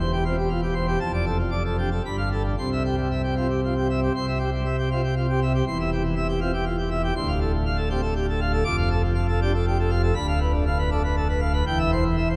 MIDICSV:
0, 0, Header, 1, 2, 480
1, 0, Start_track
1, 0, Key_signature, 0, "major"
1, 0, Tempo, 514580
1, 941, Time_signature, 3, 2, 24, 8
1, 4795, Tempo, 502513
1, 11692, End_track
2, 0, Start_track
2, 0, Title_t, "Pipe organ"
2, 0, Program_c, 0, 19
2, 0, Note_on_c, 0, 28, 98
2, 0, Note_on_c, 0, 40, 95
2, 1, Note_on_c, 0, 72, 79
2, 104, Note_off_c, 0, 72, 0
2, 113, Note_on_c, 0, 67, 71
2, 218, Note_off_c, 0, 67, 0
2, 230, Note_on_c, 0, 60, 72
2, 235, Note_on_c, 0, 65, 76
2, 334, Note_off_c, 0, 65, 0
2, 336, Note_off_c, 0, 60, 0
2, 351, Note_on_c, 0, 67, 75
2, 456, Note_off_c, 0, 67, 0
2, 462, Note_on_c, 0, 65, 59
2, 565, Note_off_c, 0, 65, 0
2, 584, Note_on_c, 0, 67, 76
2, 690, Note_off_c, 0, 67, 0
2, 691, Note_on_c, 0, 72, 74
2, 802, Note_off_c, 0, 72, 0
2, 815, Note_on_c, 0, 67, 69
2, 904, Note_off_c, 0, 40, 0
2, 905, Note_off_c, 0, 28, 0
2, 919, Note_off_c, 0, 67, 0
2, 928, Note_on_c, 0, 29, 94
2, 931, Note_on_c, 0, 41, 90
2, 934, Note_on_c, 0, 81, 104
2, 1043, Note_off_c, 0, 81, 0
2, 1060, Note_on_c, 0, 74, 74
2, 1166, Note_off_c, 0, 74, 0
2, 1172, Note_on_c, 0, 69, 66
2, 1281, Note_off_c, 0, 69, 0
2, 1291, Note_on_c, 0, 53, 66
2, 1400, Note_off_c, 0, 53, 0
2, 1407, Note_on_c, 0, 74, 69
2, 1518, Note_off_c, 0, 74, 0
2, 1537, Note_on_c, 0, 69, 64
2, 1644, Note_off_c, 0, 69, 0
2, 1666, Note_on_c, 0, 62, 64
2, 1666, Note_on_c, 0, 67, 59
2, 1764, Note_off_c, 0, 67, 0
2, 1769, Note_off_c, 0, 62, 0
2, 1786, Note_on_c, 0, 69, 64
2, 1862, Note_off_c, 0, 29, 0
2, 1864, Note_off_c, 0, 41, 0
2, 1885, Note_off_c, 0, 69, 0
2, 1915, Note_on_c, 0, 43, 66
2, 1916, Note_on_c, 0, 31, 71
2, 1917, Note_on_c, 0, 83, 73
2, 2017, Note_off_c, 0, 83, 0
2, 2031, Note_on_c, 0, 77, 69
2, 2134, Note_off_c, 0, 77, 0
2, 2161, Note_on_c, 0, 69, 62
2, 2260, Note_off_c, 0, 69, 0
2, 2293, Note_on_c, 0, 50, 57
2, 2377, Note_off_c, 0, 43, 0
2, 2378, Note_off_c, 0, 31, 0
2, 2383, Note_off_c, 0, 50, 0
2, 2405, Note_on_c, 0, 36, 70
2, 2408, Note_on_c, 0, 84, 82
2, 2409, Note_on_c, 0, 48, 73
2, 2507, Note_off_c, 0, 84, 0
2, 2542, Note_on_c, 0, 76, 59
2, 2636, Note_off_c, 0, 76, 0
2, 2659, Note_on_c, 0, 67, 63
2, 2755, Note_off_c, 0, 67, 0
2, 2776, Note_on_c, 0, 55, 57
2, 2874, Note_off_c, 0, 55, 0
2, 2901, Note_on_c, 0, 76, 60
2, 2997, Note_off_c, 0, 76, 0
2, 3018, Note_on_c, 0, 67, 57
2, 3116, Note_off_c, 0, 67, 0
2, 3143, Note_on_c, 0, 60, 64
2, 3146, Note_on_c, 0, 65, 55
2, 3237, Note_off_c, 0, 65, 0
2, 3240, Note_off_c, 0, 60, 0
2, 3267, Note_on_c, 0, 67, 59
2, 3363, Note_off_c, 0, 67, 0
2, 3402, Note_on_c, 0, 65, 47
2, 3487, Note_off_c, 0, 65, 0
2, 3518, Note_on_c, 0, 67, 62
2, 3611, Note_off_c, 0, 67, 0
2, 3638, Note_on_c, 0, 76, 63
2, 3731, Note_off_c, 0, 76, 0
2, 3758, Note_on_c, 0, 67, 58
2, 3818, Note_off_c, 0, 36, 0
2, 3820, Note_off_c, 0, 48, 0
2, 3845, Note_off_c, 0, 67, 0
2, 3875, Note_on_c, 0, 36, 92
2, 3875, Note_on_c, 0, 84, 102
2, 3877, Note_on_c, 0, 48, 85
2, 3969, Note_off_c, 0, 84, 0
2, 3991, Note_on_c, 0, 76, 70
2, 4086, Note_off_c, 0, 76, 0
2, 4093, Note_on_c, 0, 67, 67
2, 4195, Note_off_c, 0, 67, 0
2, 4227, Note_on_c, 0, 55, 64
2, 4322, Note_off_c, 0, 55, 0
2, 4344, Note_on_c, 0, 76, 66
2, 4440, Note_off_c, 0, 76, 0
2, 4465, Note_on_c, 0, 67, 67
2, 4560, Note_off_c, 0, 67, 0
2, 4583, Note_on_c, 0, 65, 66
2, 4584, Note_on_c, 0, 60, 67
2, 4674, Note_off_c, 0, 65, 0
2, 4680, Note_off_c, 0, 60, 0
2, 4701, Note_on_c, 0, 67, 77
2, 4797, Note_off_c, 0, 67, 0
2, 4821, Note_on_c, 0, 65, 57
2, 4914, Note_off_c, 0, 65, 0
2, 4942, Note_on_c, 0, 67, 78
2, 5039, Note_off_c, 0, 67, 0
2, 5061, Note_on_c, 0, 76, 70
2, 5159, Note_off_c, 0, 76, 0
2, 5182, Note_on_c, 0, 67, 69
2, 5257, Note_off_c, 0, 36, 0
2, 5258, Note_off_c, 0, 48, 0
2, 5275, Note_off_c, 0, 67, 0
2, 5296, Note_on_c, 0, 40, 91
2, 5297, Note_on_c, 0, 28, 90
2, 5303, Note_on_c, 0, 84, 108
2, 5401, Note_off_c, 0, 84, 0
2, 5424, Note_on_c, 0, 76, 74
2, 5522, Note_off_c, 0, 76, 0
2, 5539, Note_on_c, 0, 67, 74
2, 5639, Note_off_c, 0, 67, 0
2, 5651, Note_on_c, 0, 52, 72
2, 5755, Note_off_c, 0, 52, 0
2, 5770, Note_on_c, 0, 76, 76
2, 5874, Note_off_c, 0, 76, 0
2, 5888, Note_on_c, 0, 67, 70
2, 5993, Note_off_c, 0, 67, 0
2, 6005, Note_on_c, 0, 60, 77
2, 6005, Note_on_c, 0, 65, 75
2, 6105, Note_off_c, 0, 65, 0
2, 6110, Note_off_c, 0, 60, 0
2, 6128, Note_on_c, 0, 67, 75
2, 6232, Note_off_c, 0, 67, 0
2, 6243, Note_on_c, 0, 65, 59
2, 6343, Note_off_c, 0, 65, 0
2, 6363, Note_on_c, 0, 67, 76
2, 6468, Note_off_c, 0, 67, 0
2, 6484, Note_on_c, 0, 76, 75
2, 6588, Note_off_c, 0, 76, 0
2, 6605, Note_on_c, 0, 67, 75
2, 6686, Note_off_c, 0, 40, 0
2, 6687, Note_off_c, 0, 28, 0
2, 6703, Note_off_c, 0, 67, 0
2, 6722, Note_on_c, 0, 38, 101
2, 6723, Note_on_c, 0, 84, 118
2, 6727, Note_on_c, 0, 26, 96
2, 6827, Note_off_c, 0, 84, 0
2, 6842, Note_on_c, 0, 77, 80
2, 6945, Note_off_c, 0, 77, 0
2, 6962, Note_on_c, 0, 69, 78
2, 7065, Note_off_c, 0, 69, 0
2, 7081, Note_on_c, 0, 45, 77
2, 7184, Note_off_c, 0, 45, 0
2, 7203, Note_on_c, 0, 77, 76
2, 7306, Note_off_c, 0, 77, 0
2, 7306, Note_on_c, 0, 69, 77
2, 7416, Note_off_c, 0, 69, 0
2, 7430, Note_on_c, 0, 67, 69
2, 7431, Note_on_c, 0, 60, 84
2, 7534, Note_off_c, 0, 67, 0
2, 7539, Note_off_c, 0, 60, 0
2, 7546, Note_on_c, 0, 69, 79
2, 7656, Note_off_c, 0, 69, 0
2, 7674, Note_on_c, 0, 67, 60
2, 7775, Note_off_c, 0, 67, 0
2, 7805, Note_on_c, 0, 69, 81
2, 7907, Note_off_c, 0, 69, 0
2, 7916, Note_on_c, 0, 77, 79
2, 8022, Note_off_c, 0, 77, 0
2, 8031, Note_on_c, 0, 69, 80
2, 8119, Note_off_c, 0, 38, 0
2, 8122, Note_off_c, 0, 26, 0
2, 8135, Note_off_c, 0, 69, 0
2, 8140, Note_on_c, 0, 41, 109
2, 8143, Note_on_c, 0, 86, 124
2, 8147, Note_on_c, 0, 29, 108
2, 8255, Note_off_c, 0, 86, 0
2, 8263, Note_on_c, 0, 77, 85
2, 8376, Note_off_c, 0, 77, 0
2, 8390, Note_on_c, 0, 69, 83
2, 8500, Note_off_c, 0, 69, 0
2, 8516, Note_on_c, 0, 53, 76
2, 8623, Note_off_c, 0, 53, 0
2, 8625, Note_on_c, 0, 77, 87
2, 8736, Note_off_c, 0, 77, 0
2, 8752, Note_on_c, 0, 69, 86
2, 8860, Note_off_c, 0, 69, 0
2, 8880, Note_on_c, 0, 67, 79
2, 8881, Note_on_c, 0, 62, 78
2, 8980, Note_off_c, 0, 67, 0
2, 8985, Note_off_c, 0, 62, 0
2, 9002, Note_on_c, 0, 69, 91
2, 9105, Note_off_c, 0, 69, 0
2, 9126, Note_on_c, 0, 67, 65
2, 9222, Note_off_c, 0, 67, 0
2, 9239, Note_on_c, 0, 69, 85
2, 9343, Note_off_c, 0, 69, 0
2, 9343, Note_on_c, 0, 77, 83
2, 9454, Note_off_c, 0, 77, 0
2, 9465, Note_on_c, 0, 69, 80
2, 9546, Note_off_c, 0, 41, 0
2, 9550, Note_off_c, 0, 29, 0
2, 9570, Note_off_c, 0, 69, 0
2, 9575, Note_on_c, 0, 26, 99
2, 9576, Note_on_c, 0, 83, 127
2, 9581, Note_on_c, 0, 38, 110
2, 9690, Note_off_c, 0, 83, 0
2, 9701, Note_on_c, 0, 77, 82
2, 9813, Note_off_c, 0, 77, 0
2, 9822, Note_on_c, 0, 71, 81
2, 9933, Note_off_c, 0, 71, 0
2, 9938, Note_on_c, 0, 50, 83
2, 10052, Note_off_c, 0, 50, 0
2, 10070, Note_on_c, 0, 77, 82
2, 10178, Note_off_c, 0, 77, 0
2, 10186, Note_on_c, 0, 71, 84
2, 10296, Note_off_c, 0, 71, 0
2, 10306, Note_on_c, 0, 62, 80
2, 10306, Note_on_c, 0, 69, 76
2, 10411, Note_off_c, 0, 69, 0
2, 10416, Note_off_c, 0, 62, 0
2, 10433, Note_on_c, 0, 71, 89
2, 10540, Note_off_c, 0, 71, 0
2, 10551, Note_on_c, 0, 69, 60
2, 10654, Note_off_c, 0, 69, 0
2, 10670, Note_on_c, 0, 71, 85
2, 10778, Note_on_c, 0, 77, 74
2, 10779, Note_off_c, 0, 71, 0
2, 10892, Note_off_c, 0, 77, 0
2, 10900, Note_on_c, 0, 71, 78
2, 10988, Note_off_c, 0, 26, 0
2, 10991, Note_off_c, 0, 38, 0
2, 11009, Note_off_c, 0, 71, 0
2, 11024, Note_on_c, 0, 28, 92
2, 11028, Note_on_c, 0, 40, 97
2, 11030, Note_on_c, 0, 79, 126
2, 11140, Note_off_c, 0, 79, 0
2, 11148, Note_on_c, 0, 76, 76
2, 11259, Note_off_c, 0, 76, 0
2, 11273, Note_on_c, 0, 72, 85
2, 11382, Note_off_c, 0, 72, 0
2, 11390, Note_on_c, 0, 52, 84
2, 11500, Note_off_c, 0, 52, 0
2, 11505, Note_on_c, 0, 76, 81
2, 11618, Note_off_c, 0, 76, 0
2, 11628, Note_on_c, 0, 72, 74
2, 11692, Note_off_c, 0, 28, 0
2, 11692, Note_off_c, 0, 40, 0
2, 11692, Note_off_c, 0, 72, 0
2, 11692, End_track
0, 0, End_of_file